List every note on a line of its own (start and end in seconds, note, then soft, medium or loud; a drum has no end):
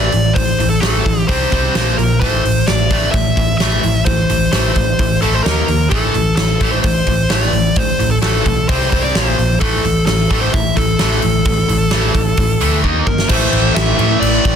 0.00 0.11 A2 medium
0.00 0.12 E3 medium
0.00 0.12 A3 medium
0.00 0.37 D5 medium
0.00 snare soft
0.12 0.29 A1 medium
0.12 0.34 A2 medium
0.12 0.34 E3 medium
0.12 open hi-hat soft
0.34 0.52 A1 medium
0.34 0.57 A2 medium
0.34 0.57 E3 medium
0.34 0.70 C5 medium
0.34 kick loud
0.34 open hi-hat medium
0.60 0.76 A1 medium
0.60 0.80 A2 medium
0.60 0.81 E3 medium
0.60 open hi-hat soft
0.70 0.80 A4 medium
0.81 0.99 A1 medium
0.81 1.04 A2 medium
0.81 1.04 E3 medium
0.81 1.04 A3 medium
0.81 1.28 A4 medium
0.81 snare loud
0.81 open hi-hat medium
1.06 1.22 A1 medium
1.06 1.27 A2 medium
1.06 1.27 E3 medium
1.06 kick medium
1.06 open hi-hat soft
1.28 1.45 C2 medium
1.28 1.50 C3 medium
1.28 1.51 G3 medium
1.28 1.51 C4 loud
1.28 1.98 C5 medium
1.28 kick medium
1.28 open hi-hat medium
1.52 1.68 C2 medium
1.52 1.74 C3 medium
1.52 1.74 G3 medium
1.52 1.74 C4 medium
1.52 kick medium
1.52 open hi-hat soft
1.75 1.92 A#1 medium
1.75 1.97 A#2 medium
1.75 1.97 F3 medium
1.75 1.97 A#3 medium
1.75 snare loud
1.75 open hi-hat medium
1.87 snare soft
1.98 2.22 A#1 medium
1.98 2.19 A#2 medium
1.98 2.19 F3 medium
1.98 2.20 A#4 medium
1.98 open hi-hat soft
2.20 2.38 A1 medium
2.20 2.42 A2 medium
2.20 2.43 E3 medium
2.20 2.43 A3 medium
2.20 2.69 C5 loud
2.20 kick medium
2.20 open hi-hat medium
2.43 2.61 A1 medium
2.43 2.65 A2 medium
2.43 2.65 E3 medium
2.43 open hi-hat soft
2.67 2.85 A1 medium
2.67 2.89 A2 medium
2.67 2.89 E3 medium
2.67 3.11 D5 medium
2.67 snare medium
2.67 open hi-hat medium
2.90 3.07 A1 medium
2.90 3.13 A2 medium
2.90 3.13 E3 medium
2.90 3.13 A3 medium
2.90 kick medium
2.90 open hi-hat medium
3.11 3.30 A1 medium
3.11 3.35 A2 medium
3.11 3.35 E3 medium
3.11 3.56 E5 medium
3.11 kick loud
3.11 open hi-hat medium
3.37 3.53 A1 medium
3.37 3.59 A2 medium
3.37 3.59 E3 medium
3.37 kick medium
3.37 open hi-hat soft
3.58 3.77 A1 medium
3.58 3.82 A2 medium
3.58 4.02 E5 loud
3.58 snare loud
3.58 open hi-hat medium
3.62 3.83 E3 medium
3.62 3.83 A3 medium
3.83 4.00 A1 medium
3.83 4.05 A2 medium
3.83 4.05 E3 medium
3.83 open hi-hat soft
4.05 4.22 A1 medium
4.05 4.28 A2 medium
4.05 4.28 E3 medium
4.05 4.51 C5 medium
4.05 kick loud
4.05 open hi-hat medium
4.30 4.46 A1 medium
4.30 4.50 A2 medium
4.30 4.51 E3 medium
4.30 open hi-hat medium
4.52 4.69 A1 medium
4.52 4.75 A2 medium
4.52 4.75 E3 medium
4.52 4.76 A3 medium
4.52 5.21 C5 medium
4.52 snare loud
4.52 open hi-hat medium
4.75 4.92 A1 medium
4.75 4.98 A2 medium
4.75 4.98 E3 medium
4.75 kick medium
4.75 open hi-hat medium
4.99 5.15 A1 medium
4.99 5.20 A2 medium
4.99 5.20 E3 medium
4.99 kick medium
4.99 open hi-hat medium
5.22 5.38 A1 medium
5.22 5.44 A2 medium
5.22 5.44 E3 medium
5.22 5.44 A3 medium
5.22 5.34 A4 medium
5.22 open hi-hat soft
5.34 5.43 C5 medium
5.43 5.62 D#2 medium
5.43 5.67 D#3 medium
5.43 5.67 A#3 medium
5.43 5.67 D#4 medium
5.43 5.90 A#4 medium
5.43 snare loud
5.43 open hi-hat medium
5.68 5.85 D#2 medium
5.68 5.89 D#3 medium
5.68 5.90 A#3 medium
5.68 open hi-hat soft
5.90 6.08 A1 medium
5.90 6.13 A2 medium
5.90 6.14 E3 medium
5.90 6.14 A3 medium
5.90 6.35 A4 medium
5.90 kick medium
5.90 open hi-hat medium
6.14 6.31 A1 medium
6.14 6.36 A2 medium
6.14 6.36 E3 medium
6.14 open hi-hat soft
6.36 6.54 A1 medium
6.36 6.59 A2 medium
6.36 6.60 E3 medium
6.36 6.72 A4 medium
6.36 snare loud
6.36 open hi-hat medium
6.60 6.77 A1 medium
6.60 6.83 A2 medium
6.60 6.83 E3 medium
6.60 6.84 A3 medium
6.60 kick medium
6.60 open hi-hat soft
6.72 6.77 C5 medium
6.83 7.00 A1 medium
6.83 7.05 A2 medium
6.83 7.05 E3 medium
6.83 7.31 C5 medium
6.83 kick loud
6.83 open hi-hat medium
7.06 7.23 A1 medium
7.06 7.29 A2 medium
7.06 7.29 E3 medium
7.06 kick medium
7.06 open hi-hat soft
7.30 7.46 A1 medium
7.30 7.52 A2 medium
7.30 7.52 E3 medium
7.30 7.53 A3 medium
7.30 7.78 D5 medium
7.30 snare loud
7.30 open hi-hat medium
7.42 snare soft
7.53 7.69 A1 medium
7.53 7.74 A2 medium
7.53 7.75 E3 medium
7.53 open hi-hat soft
7.76 7.93 A1 medium
7.76 7.98 A2 medium
7.76 7.98 E3 medium
7.76 8.11 C5 medium
7.76 kick loud
7.76 open hi-hat medium
7.99 8.16 A1 medium
7.99 8.21 A2 medium
7.99 8.20 E3 medium
7.99 open hi-hat soft
8.11 8.16 A4 medium
8.22 8.39 A1 medium
8.22 8.44 A2 medium
8.22 8.45 E3 medium
8.22 8.45 A3 medium
8.22 8.68 A4 medium
8.22 snare medium
8.22 open hi-hat medium
8.46 8.62 B1 medium
8.46 8.67 A2 medium
8.46 8.67 E3 medium
8.46 kick medium
8.46 open hi-hat medium
8.69 8.85 C2 medium
8.69 8.90 C3 medium
8.69 8.91 G3 medium
8.69 8.92 C4 loud
8.69 8.89 C5 medium
8.69 kick loud
8.69 open hi-hat medium
8.90 9.09 C2 medium
8.90 9.14 C3 medium
8.90 9.14 G3 medium
8.90 9.14 C4 medium
8.90 9.03 C5 medium
8.90 kick medium
8.90 open hi-hat soft
9.01 9.15 D5 medium
9.13 9.31 A#1 medium
9.13 9.37 A#2 medium
9.13 9.38 F3 medium
9.13 9.60 C5 medium
9.13 snare loud
9.13 open hi-hat medium
9.17 9.38 A#3 medium
9.39 9.55 A#1 medium
9.39 9.59 A#2 medium
9.39 9.60 F3 medium
9.39 open hi-hat soft
9.60 9.78 A1 medium
9.60 9.83 A2 medium
9.60 9.83 E3 medium
9.60 9.83 A3 medium
9.60 10.05 A4 medium
9.60 kick loud
9.60 open hi-hat medium
9.84 10.01 A1 medium
9.84 10.05 A2 medium
9.84 10.05 E3 medium
9.84 open hi-hat soft
10.06 10.24 A1 medium
10.06 10.28 A2 medium
10.06 10.28 E3 medium
10.06 10.41 A4 medium
10.06 snare loud
10.06 open hi-hat medium
10.30 10.47 A1 medium
10.30 10.52 A2 medium
10.30 10.52 E3 medium
10.30 10.52 A3 medium
10.30 kick medium
10.30 open hi-hat medium
10.41 10.54 C5 medium
10.53 10.70 A1 medium
10.53 10.74 A2 medium
10.53 10.74 E3 medium
10.53 10.77 E5 medium
10.53 kick loud
10.53 open hi-hat medium
10.75 10.93 A1 medium
10.75 10.97 A2 medium
10.75 10.97 E3 medium
10.75 12.80 A4 medium
10.75 kick medium
10.75 open hi-hat soft
10.99 11.17 A1 medium
10.99 11.21 A2 medium
10.99 11.21 E3 medium
10.99 11.22 A3 loud
10.99 snare loud
10.99 open hi-hat medium
11.11 snare soft
11.22 11.40 A1 medium
11.22 11.43 A2 medium
11.22 11.43 E3 medium
11.22 open hi-hat soft
11.45 11.62 A1 medium
11.45 11.66 A2 medium
11.45 11.67 E3 medium
11.45 kick loud
11.45 open hi-hat medium
11.68 11.85 A1 medium
11.68 11.89 A2 medium
11.68 11.89 E3 medium
11.68 open hi-hat medium
11.91 12.08 A1 medium
11.91 12.13 A2 medium
11.91 12.13 E3 medium
11.91 12.14 A3 medium
11.91 snare loud
11.91 open hi-hat medium
12.14 12.31 A1 medium
12.14 12.36 A2 medium
12.14 12.36 E3 medium
12.14 kick medium
12.14 open hi-hat medium
12.37 12.54 A1 medium
12.37 12.59 A2 medium
12.37 12.59 E3 medium
12.37 kick loud
12.37 open hi-hat medium
12.61 12.84 D2 medium
12.61 12.82 A2 medium
12.61 12.83 E3 medium
12.61 12.83 A3 medium
12.61 open hi-hat medium
12.84 13.00 D#2 medium
12.84 13.05 D#3 medium
12.84 13.06 A#3 medium
12.84 13.06 D#4 medium
12.84 kick medium
13.07 13.23 G1 medium
13.07 13.28 D#3 medium
13.07 13.28 A#3 medium
13.07 13.29 A#4 medium
13.07 kick medium
13.18 snare medium
13.29 13.45 A1 loud
13.29 13.97 A2 medium
13.29 14.00 E3 medium
13.29 13.97 A3 medium
13.29 13.73 C5 loud
13.29 kick loud
13.29 crash loud
13.29 crash medium
13.53 13.68 A1 medium
13.53 crash medium
13.74 13.91 A1 medium
13.74 14.18 E5 loud
13.74 snare loud
13.74 crash medium
13.98 14.14 A2 loud
13.98 14.56 A2 medium
13.98 14.56 E3 medium
13.98 14.56 A3 medium
13.98 crash medium
14.20 14.37 A1 medium
14.20 14.56 D5 loud
14.20 crash medium
14.45 14.56 A1 medium
14.45 kick medium
14.45 crash medium